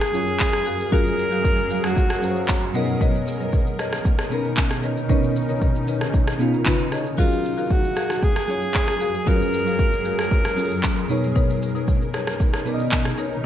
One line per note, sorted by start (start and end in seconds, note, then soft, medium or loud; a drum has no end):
0.00 2.71 F#2 medium
0.00 0.13 F#3 medium
0.00 2.71 F#3 medium
0.00 0.14 C#4 medium
0.00 0.93 G#4 loud
0.00 2.71 G#4 medium
0.00 0.94 A#4 medium
0.00 6.62 A#4 medium
0.00 2.23 F5 medium
0.00 cross-stick loud
0.00 shaker soft
0.13 0.76 F#3 medium
0.13 0.77 C#4 medium
0.13 0.77 F4 medium
0.13 0.78 G#4 medium
0.13 0.78 C#5 medium
0.13 shaker medium
0.27 shaker soft
0.39 kick loud
0.39 clap loud
0.39 shaker medium
0.53 cross-stick loud
0.53 shaker medium
0.66 0.90 F#4 medium
0.66 0.90 G#4 medium
0.66 0.90 A#4 medium
0.66 0.90 F5 medium
0.66 shaker medium
0.80 shaker soft
0.91 1.75 F#3 medium
0.91 1.76 C#4 medium
0.91 1.76 F4 medium
0.91 1.05 F#4 medium
0.91 1.05 G#4 medium
0.91 1.76 G#4 medium
0.91 1.05 A#4 medium
0.91 1.87 A#4 loud
0.91 1.77 A#4 medium
0.91 1.05 F5 loud
0.91 kick loud
0.91 shaker medium
1.06 shaker medium
1.19 shaker medium
1.32 1.44 F#4 medium
1.32 1.44 G#4 medium
1.32 1.44 A#4 medium
1.32 1.44 F5 medium
1.32 shaker medium
1.44 kick loud
1.44 shaker medium
1.58 shaker soft
1.70 1.83 F#4 medium
1.70 1.84 G#4 medium
1.70 1.84 A#4 medium
1.70 1.84 F5 medium
1.70 shaker medium
1.84 2.75 F#4 medium
1.84 cross-stick loud
1.84 shaker medium
1.97 kick loud
1.97 shaker medium
2.10 cross-stick loud
2.10 shaker soft
2.21 2.74 F#3 medium
2.21 2.74 C#4 medium
2.21 2.75 G#4 medium
2.21 2.30 C5 medium
2.21 2.75 F5 medium
2.21 shaker medium
2.31 2.79 C#5 medium
2.36 shaker soft
2.48 2.73 A#5 medium
2.48 kick loud
2.48 clap loud
2.48 shaker medium
2.62 shaker medium
2.74 3.58 B2 medium
2.74 6.62 B2 medium
2.74 3.58 B3 medium
2.74 6.62 C#4 medium
2.74 3.59 C#4 medium
2.74 7.14 D#4 medium
2.74 3.59 D#4 medium
2.74 2.88 A#4 medium
2.74 3.59 A#4 loud
2.74 2.88 B4 medium
2.74 2.88 C#5 medium
2.74 2.88 D#5 medium
2.74 2.99 F#5 medium
2.74 shaker medium
2.89 shaker medium
3.01 3.14 A#4 medium
3.01 3.14 B4 medium
3.01 3.14 C#5 medium
3.01 3.14 D#5 loud
3.01 kick loud
3.01 shaker medium
3.15 shaker medium
3.28 shaker loud
3.40 3.52 A#4 medium
3.40 3.53 B4 medium
3.40 3.53 C#5 medium
3.40 3.53 D#5 medium
3.40 shaker medium
3.53 kick loud
3.53 shaker medium
3.67 shaker soft
3.79 3.92 A#4 medium
3.79 3.92 B4 medium
3.79 3.92 C#5 medium
3.79 3.92 D#5 medium
3.79 cross-stick medium
3.79 shaker medium
3.93 cross-stick loud
3.93 shaker medium
4.05 kick loud
4.05 shaker medium
4.19 cross-stick loud
4.19 shaker soft
4.30 4.94 B2 medium
4.30 4.94 B3 medium
4.30 4.94 C#4 medium
4.30 4.95 D#4 medium
4.30 4.95 A#4 medium
4.30 shaker medium
4.45 shaker soft
4.57 kick loud
4.57 clap loud
4.57 shaker medium
4.70 cross-stick loud
4.70 shaker medium
4.83 5.07 A#4 medium
4.83 5.07 B4 medium
4.83 5.08 C#5 medium
4.83 5.08 D#5 medium
4.83 shaker medium
4.97 shaker medium
5.08 5.93 B2 medium
5.08 5.93 B3 medium
5.08 5.93 C#4 medium
5.08 5.94 D#4 medium
5.08 5.23 A#4 loud
5.08 5.23 B4 medium
5.08 5.23 C#5 medium
5.08 5.94 C#5 loud
5.08 5.23 D#5 loud
5.08 kick loud
5.08 shaker medium
5.24 shaker medium
5.36 shaker medium
5.49 5.61 A#4 medium
5.49 5.61 B4 medium
5.49 5.61 C#5 medium
5.49 5.61 D#5 medium
5.49 shaker medium
5.61 kick loud
5.61 shaker medium
5.76 shaker soft
5.88 6.01 A#4 medium
5.88 6.01 B4 medium
5.88 6.01 C#5 medium
5.88 6.01 D#5 medium
5.88 shaker medium
6.01 cross-stick loud
6.01 shaker medium
6.14 kick loud
6.14 shaker medium
6.28 cross-stick loud
6.28 shaker soft
6.39 6.66 B2 medium
6.39 6.66 B3 medium
6.39 6.64 C#4 medium
6.39 6.65 D#4 medium
6.39 6.66 F4 medium
6.39 shaker medium
6.53 shaker soft
6.65 7.08 C#3 loud
6.65 7.08 C#4 medium
6.65 7.08 D#4 medium
6.65 7.09 F4 medium
6.65 7.09 B4 loud
6.65 kick loud
6.65 clap loud
6.65 shaker medium
6.79 shaker medium
6.92 7.05 F4 medium
6.92 7.05 B4 medium
6.92 7.05 C#5 medium
6.92 7.05 D#5 medium
6.92 cross-stick medium
6.92 shaker medium
7.06 shaker medium
7.17 11.06 F#2 medium
7.17 8.01 F#3 medium
7.17 11.06 F#3 medium
7.17 8.02 C#4 medium
7.17 7.73 F4 medium
7.17 7.31 F#4 medium
7.17 7.31 G#4 medium
7.17 11.06 G#4 medium
7.17 8.02 G#4 medium
7.17 7.31 A#4 medium
7.17 13.46 A#4 medium
7.17 8.03 A#4 medium
7.17 7.31 F5 loud
7.17 8.02 F5 medium
7.17 kick loud
7.17 shaker medium
7.32 shaker medium
7.45 shaker medium
7.58 7.70 F#4 medium
7.58 7.70 G#4 medium
7.58 7.70 A#4 medium
7.58 7.70 F5 medium
7.58 shaker medium
7.70 8.25 F#4 medium
7.70 kick loud
7.70 shaker medium
7.84 shaker soft
7.96 8.09 F#4 medium
7.96 8.09 G#4 medium
7.96 8.10 A#4 medium
7.96 8.10 F5 medium
7.96 cross-stick medium
7.96 shaker medium
8.10 cross-stick loud
8.10 shaker medium
8.23 9.30 G#4 loud
8.23 kick loud
8.23 shaker medium
8.36 cross-stick loud
8.36 shaker soft
8.48 9.11 F#3 medium
8.48 9.12 C#4 medium
8.48 9.12 F4 medium
8.48 9.12 G#4 medium
8.48 9.13 C#5 medium
8.48 shaker medium
8.62 shaker soft
8.74 kick loud
8.74 clap medium
8.74 shaker medium
8.88 cross-stick loud
8.88 shaker medium
9.00 9.25 F#4 medium
9.00 9.25 G#4 medium
9.00 9.25 A#4 medium
9.00 9.25 F5 medium
9.00 shaker medium
9.15 shaker medium
9.26 10.10 F#3 medium
9.26 10.10 C#4 medium
9.26 10.11 F4 medium
9.26 9.40 F#4 medium
9.26 9.40 G#4 medium
9.26 10.11 G#4 medium
9.26 9.40 A#4 medium
9.26 10.19 A#4 loud
9.26 9.34 B4 medium
9.26 9.40 F5 loud
9.26 kick loud
9.26 shaker medium
9.35 10.15 C#5 medium
9.41 shaker medium
9.54 shaker medium
9.66 9.79 F#4 medium
9.66 9.79 G#4 medium
9.66 9.79 A#4 medium
9.66 9.79 F5 medium
9.66 shaker medium
9.79 kick loud
9.79 shaker medium
9.93 shaker soft
10.05 10.18 F#4 medium
10.05 10.18 G#4 medium
10.05 10.18 A#4 medium
10.05 10.19 F5 medium
10.05 shaker medium
10.19 11.06 A#4 loud
10.19 cross-stick loud
10.19 shaker medium
10.31 kick loud
10.31 shaker medium
10.45 cross-stick loud
10.45 shaker soft
10.57 11.09 F#3 medium
10.57 11.10 C#4 medium
10.57 11.10 F4 medium
10.57 11.10 G#4 medium
10.57 10.65 A4 medium
10.57 shaker medium
10.66 11.10 A#4 medium
10.71 shaker soft
10.83 kick loud
10.83 clap loud
10.83 shaker medium
10.97 shaker medium
11.09 11.93 B2 loud
11.09 13.46 B2 medium
11.09 11.93 B3 medium
11.09 13.46 C#4 medium
11.09 11.23 D#4 medium
11.09 13.46 D#4 medium
11.09 11.94 D#4 medium
11.09 11.23 A#4 medium
11.09 11.94 A#4 medium
11.09 11.23 B4 medium
11.09 11.23 C#5 medium
11.09 11.94 C#5 loud
11.09 shaker medium
11.24 shaker medium
11.36 11.49 D#4 medium
11.36 11.49 A#4 medium
11.36 11.49 B4 medium
11.36 11.49 C#5 loud
11.36 kick loud
11.36 shaker medium
11.50 shaker medium
11.62 shaker medium
11.75 11.87 D#4 medium
11.75 11.87 A#4 medium
11.75 11.88 B4 medium
11.75 11.88 C#5 medium
11.75 shaker medium
11.88 kick loud
11.88 shaker medium
12.02 shaker soft
12.14 12.27 D#4 medium
12.14 12.27 A#4 medium
12.14 12.27 B4 medium
12.14 12.27 C#5 medium
12.14 cross-stick medium
12.14 shaker medium
12.27 cross-stick loud
12.27 shaker medium
12.40 kick loud
12.40 shaker medium
12.54 cross-stick loud
12.54 shaker soft
12.65 13.29 B2 medium
12.65 13.29 B3 medium
12.65 13.29 D#4 medium
12.65 13.30 A#4 medium
12.65 12.74 D5 medium
12.65 shaker medium
12.74 13.33 D#5 loud
12.79 shaker soft
12.91 kick loud
12.91 clap loud
12.91 shaker medium
13.05 cross-stick loud
13.05 shaker medium
13.18 13.42 D#4 medium
13.18 13.42 A#4 medium
13.18 13.43 B4 medium
13.18 13.43 C#5 medium
13.18 shaker medium
13.32 shaker medium